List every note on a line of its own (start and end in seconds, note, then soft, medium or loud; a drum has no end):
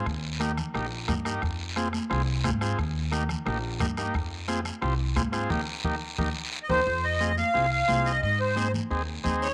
0.06 0.61 D#2 medium
0.06 bombo low medium
0.06 bombo rim medium
0.06 long guiro medium
0.40 0.52 A#3 medium
0.40 0.52 D#4 medium
0.40 0.52 G4 medium
0.40 bombo rim medium
0.40 high conga medium
0.40 short guiro medium
0.57 bombo rim medium
0.57 low conga medium
0.57 short guiro medium
0.74 1.10 A#1 loud
0.74 0.86 A#3 medium
0.74 0.86 D#4 medium
0.74 0.86 G4 medium
0.74 bombo rim medium
0.74 long guiro medium
1.08 1.36 G2 medium
1.08 1.14 A#3 medium
1.08 1.14 D#4 medium
1.08 1.15 G4 medium
1.08 bombo low medium
1.08 bombo rim medium
1.08 high conga medium
1.08 low conga medium
1.08 short guiro medium
1.25 1.42 A#3 medium
1.25 1.43 D#4 medium
1.25 1.43 G4 medium
1.25 bombo rim medium
1.25 short guiro medium
1.42 1.97 F2 medium
1.42 bombo low medium
1.42 bombo rim medium
1.42 long guiro medium
1.76 1.88 C4 medium
1.76 1.89 F4 medium
1.76 1.89 G#4 medium
1.76 bombo rim medium
1.76 high conga medium
1.76 short guiro medium
1.93 bombo rim medium
1.93 high conga medium
1.93 short guiro medium
2.10 2.46 C2 medium
2.10 2.22 C4 medium
2.10 2.22 F4 medium
2.10 2.22 G#4 medium
2.10 bombo rim medium
2.10 long guiro medium
2.44 2.72 G#2 medium
2.44 2.50 C4 medium
2.44 2.51 F4 medium
2.44 2.51 G#4 medium
2.44 bombo low medium
2.44 bombo rim medium
2.44 high conga medium
2.44 short guiro medium
2.61 2.78 C4 medium
2.61 2.79 F4 medium
2.61 2.79 G#4 medium
2.61 bombo rim medium
2.61 short guiro medium
2.79 3.33 D#2 medium
2.79 bombo low medium
2.79 bombo rim medium
2.79 long guiro medium
3.12 3.24 A#3 medium
3.12 3.24 D#4 medium
3.12 3.24 G4 medium
3.12 bombo rim medium
3.12 high conga medium
3.12 short guiro medium
3.29 bombo rim medium
3.29 high conga medium
3.29 low conga medium
3.29 short guiro medium
3.46 3.82 A#1 loud
3.46 3.58 A#3 medium
3.46 3.58 D#4 medium
3.46 3.58 G4 medium
3.46 bombo rim medium
3.46 long guiro medium
3.80 4.08 G2 medium
3.80 3.86 A#3 medium
3.80 3.86 D#4 medium
3.80 3.87 G4 medium
3.80 bombo low medium
3.80 bombo rim medium
3.80 high conga medium
3.80 low conga medium
3.80 short guiro medium
3.97 4.15 A#3 medium
3.97 4.15 D#4 medium
3.97 4.15 G4 medium
3.97 bombo rim medium
3.97 short guiro medium
4.14 4.69 F2 medium
4.14 bombo low medium
4.14 bombo rim medium
4.14 long guiro medium
4.48 4.60 C4 medium
4.48 4.60 F4 medium
4.48 4.61 G#4 medium
4.48 bombo rim medium
4.48 high conga medium
4.48 short guiro medium
4.65 bombo rim medium
4.65 high conga medium
4.65 short guiro medium
4.82 5.18 C2 loud
4.82 4.94 C4 medium
4.82 4.94 F4 medium
4.82 4.94 G4 medium
4.82 bombo rim medium
4.82 long guiro medium
5.16 5.44 G#2 medium
5.16 5.22 C4 medium
5.16 5.22 F4 medium
5.16 5.23 G#4 medium
5.16 bombo low medium
5.16 bombo rim medium
5.16 high conga medium
5.16 short guiro medium
5.32 5.50 C4 medium
5.32 5.50 F4 medium
5.32 5.50 G#4 medium
5.32 bombo rim medium
5.32 short guiro medium
5.50 5.63 D#2 medium
5.50 5.61 A#3 medium
5.50 5.61 D#4 medium
5.50 5.61 G4 medium
5.50 bombo low medium
5.50 low conga medium
5.50 long guiro medium
5.84 5.97 D#2 medium
5.84 5.95 A#3 medium
5.84 5.96 D#4 medium
5.84 5.96 G4 loud
5.84 bombo low medium
5.84 low conga medium
5.84 long guiro loud
6.18 6.31 D#2 medium
6.18 6.29 A#3 medium
6.18 6.29 D#4 medium
6.18 6.29 G4 medium
6.18 bombo low loud
6.18 low conga loud
6.18 long guiro loud
6.63 6.70 D#5 medium
6.69 6.82 D#2 medium
6.69 6.81 A#3 medium
6.69 6.81 D#4 medium
6.69 6.81 G4 medium
6.69 7.05 C5 medium
6.69 bombo low medium
6.69 low conga loud
6.69 long guiro loud
6.87 7.41 F2 loud
6.87 long guiro medium
7.04 7.35 D#5 medium
7.20 7.32 C4 medium
7.20 7.33 F4 medium
7.20 7.33 G#4 medium
7.20 high conga medium
7.20 short guiro medium
7.38 7.70 F5 medium
7.38 high conga medium
7.38 short guiro medium
7.54 7.82 C2 medium
7.54 7.66 C4 medium
7.54 7.66 F4 medium
7.54 7.67 G#4 medium
7.54 long guiro medium
7.71 8.07 F5 loud
7.88 8.16 C2 medium
7.88 8.12 C4 medium
7.88 8.12 F4 medium
7.88 8.12 G#4 medium
7.88 high conga medium
7.88 short guiro medium
8.06 8.21 D#5 medium
8.06 short guiro medium
8.22 8.77 G#2 medium
8.22 8.40 D#5 medium
8.22 long guiro medium
8.40 8.72 C5 medium
8.56 8.68 C4 medium
8.56 8.68 D#4 medium
8.56 8.69 G#4 medium
8.56 high conga medium
8.56 short guiro medium
8.74 high conga medium
8.74 low conga medium
8.74 short guiro medium
8.90 9.18 D#2 medium
8.90 9.02 C4 medium
8.90 9.03 D#4 medium
8.90 9.03 G#4 medium
8.90 long guiro medium
9.24 9.52 D#2 medium
9.24 9.48 C4 medium
9.24 9.48 D#4 medium
9.24 9.48 G#4 loud
9.24 high conga medium
9.24 low conga medium
9.24 short guiro medium
9.42 9.54 C#5 medium
9.42 short guiro medium